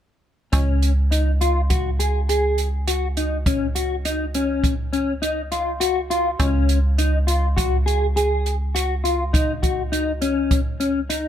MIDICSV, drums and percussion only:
0, 0, Header, 1, 2, 480
1, 0, Start_track
1, 0, Key_signature, -5, "major"
1, 0, Tempo, 586510
1, 435, Time_signature, 5, 2, 24, 8
1, 9232, End_track
2, 0, Start_track
2, 0, Title_t, "Drums"
2, 431, Note_on_c, 9, 42, 59
2, 434, Note_on_c, 9, 36, 77
2, 513, Note_off_c, 9, 42, 0
2, 515, Note_off_c, 9, 36, 0
2, 675, Note_on_c, 9, 42, 46
2, 757, Note_off_c, 9, 42, 0
2, 916, Note_on_c, 9, 42, 55
2, 998, Note_off_c, 9, 42, 0
2, 1156, Note_on_c, 9, 42, 47
2, 1238, Note_off_c, 9, 42, 0
2, 1393, Note_on_c, 9, 42, 63
2, 1395, Note_on_c, 9, 36, 72
2, 1475, Note_off_c, 9, 42, 0
2, 1477, Note_off_c, 9, 36, 0
2, 1636, Note_on_c, 9, 42, 48
2, 1718, Note_off_c, 9, 42, 0
2, 1877, Note_on_c, 9, 42, 54
2, 1959, Note_off_c, 9, 42, 0
2, 2111, Note_on_c, 9, 42, 36
2, 2193, Note_off_c, 9, 42, 0
2, 2354, Note_on_c, 9, 42, 64
2, 2435, Note_off_c, 9, 42, 0
2, 2594, Note_on_c, 9, 42, 42
2, 2675, Note_off_c, 9, 42, 0
2, 2833, Note_on_c, 9, 36, 89
2, 2834, Note_on_c, 9, 42, 62
2, 2915, Note_off_c, 9, 36, 0
2, 2916, Note_off_c, 9, 42, 0
2, 3075, Note_on_c, 9, 42, 45
2, 3156, Note_off_c, 9, 42, 0
2, 3316, Note_on_c, 9, 42, 59
2, 3397, Note_off_c, 9, 42, 0
2, 3556, Note_on_c, 9, 42, 43
2, 3638, Note_off_c, 9, 42, 0
2, 3794, Note_on_c, 9, 36, 71
2, 3798, Note_on_c, 9, 42, 55
2, 3876, Note_off_c, 9, 36, 0
2, 3879, Note_off_c, 9, 42, 0
2, 4037, Note_on_c, 9, 42, 40
2, 4119, Note_off_c, 9, 42, 0
2, 4278, Note_on_c, 9, 42, 57
2, 4360, Note_off_c, 9, 42, 0
2, 4516, Note_on_c, 9, 42, 39
2, 4598, Note_off_c, 9, 42, 0
2, 4755, Note_on_c, 9, 42, 67
2, 4837, Note_off_c, 9, 42, 0
2, 5000, Note_on_c, 9, 42, 41
2, 5082, Note_off_c, 9, 42, 0
2, 5235, Note_on_c, 9, 42, 65
2, 5236, Note_on_c, 9, 36, 79
2, 5317, Note_off_c, 9, 42, 0
2, 5318, Note_off_c, 9, 36, 0
2, 5475, Note_on_c, 9, 42, 51
2, 5557, Note_off_c, 9, 42, 0
2, 5717, Note_on_c, 9, 42, 58
2, 5799, Note_off_c, 9, 42, 0
2, 5958, Note_on_c, 9, 42, 49
2, 6040, Note_off_c, 9, 42, 0
2, 6200, Note_on_c, 9, 36, 77
2, 6202, Note_on_c, 9, 42, 65
2, 6282, Note_off_c, 9, 36, 0
2, 6284, Note_off_c, 9, 42, 0
2, 6446, Note_on_c, 9, 42, 44
2, 6528, Note_off_c, 9, 42, 0
2, 6686, Note_on_c, 9, 42, 54
2, 6768, Note_off_c, 9, 42, 0
2, 6924, Note_on_c, 9, 42, 37
2, 7006, Note_off_c, 9, 42, 0
2, 7166, Note_on_c, 9, 42, 66
2, 7248, Note_off_c, 9, 42, 0
2, 7407, Note_on_c, 9, 42, 43
2, 7489, Note_off_c, 9, 42, 0
2, 7643, Note_on_c, 9, 36, 85
2, 7648, Note_on_c, 9, 42, 64
2, 7725, Note_off_c, 9, 36, 0
2, 7730, Note_off_c, 9, 42, 0
2, 7882, Note_on_c, 9, 36, 61
2, 7885, Note_on_c, 9, 42, 49
2, 7964, Note_off_c, 9, 36, 0
2, 7967, Note_off_c, 9, 42, 0
2, 8125, Note_on_c, 9, 42, 55
2, 8207, Note_off_c, 9, 42, 0
2, 8362, Note_on_c, 9, 42, 41
2, 8443, Note_off_c, 9, 42, 0
2, 8601, Note_on_c, 9, 36, 75
2, 8601, Note_on_c, 9, 42, 66
2, 8683, Note_off_c, 9, 36, 0
2, 8683, Note_off_c, 9, 42, 0
2, 8843, Note_on_c, 9, 42, 43
2, 8925, Note_off_c, 9, 42, 0
2, 9084, Note_on_c, 9, 42, 55
2, 9166, Note_off_c, 9, 42, 0
2, 9232, End_track
0, 0, End_of_file